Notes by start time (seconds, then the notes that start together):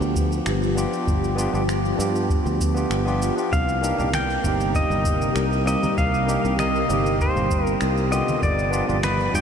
Already playing: F3 B3 D4 F4 G4
0.01 D2, cabasa
0.16 kick, cabasa
0.32 cabasa
0.46 G1, finger snap, cabasa
0.63 cabasa
0.75 B3 D4 F4 G4, cabasa
0.93 cabasa
1.07 G1, kick, cabasa
1.24 cabasa
1.36 B3 D4 F4 G4, cabasa
1.52 G1 B3 D4 F4 G4, cabasa
1.69 finger snap, cabasa
1.85 cabasa
1.96 G2 B3 D4
2.00 F4 G4, cabasa
2.16 cabasa
2.30 kick, cabasa
2.46 D2, cabasa
2.60 kick, cabasa
2.74 B3 D4 F4 G4, cabasa
2.90 G1, finger snap, cabasa
3.05 B3 D4 F4 G4, cabasa
3.22 cabasa
3.36 B3 D4 F4 G4, cabasa
3.52 C2 C3 G3 A#4 F5, kick, cabasa
3.69 cabasa
3.81 A#3 D4 D#4 G4, cabasa
3.97 C2 A#3 D4 D#4 G4, low conga, cabasa
4.13 G5, finger snap, high conga, cabasa
4.30 cabasa
4.42 G1 A#3 C4, kick, cabasa
4.46 D#4 G4
4.61 cabasa
4.75 D#5, kick, cabasa
4.90 G1, high conga, cabasa
5.05 kick, cabasa
5.22 cabasa
5.36 C2, finger snap, cabasa
5.53 cabasa
5.65 A#3 C4 D#4 G4 D#5, cabasa
5.83 high conga, low conga, cabasa
5.98 C2 F5, kick, cabasa
6.14 cabasa
6.27 A#3 D4 D#4 G4, cabasa
6.43 C2 A#3 D4 D#4 G4, cabasa
6.58 D#5, finger snap, high conga, cabasa
6.76 cabasa
6.87 G1 A#3 C4, cabasa
6.91 D#4 G4
7.06 cabasa
7.20 C5, kick, cabasa
7.36 G1, high conga, low conga, cabasa
7.51 kick, cabasa
7.65 A#4, cabasa
7.81 C2, finger snap, cabasa
7.97 cabasa
8.11 D3 B3 F4 G4 D#5, cabasa
8.28 high conga, cabasa
8.42 G1 F3 B3 G4 D5, kick, cabasa
8.59 cabasa
8.70 B3 D4 F4 G4, cabasa
8.87 G1 B3 D4 F4 G4, low conga, cabasa
9.03 B4, finger snap, high conga, cabasa
9.20 cabasa
9.30 B3 D4
9.34 G2 F4 G4 G5, kick, cabasa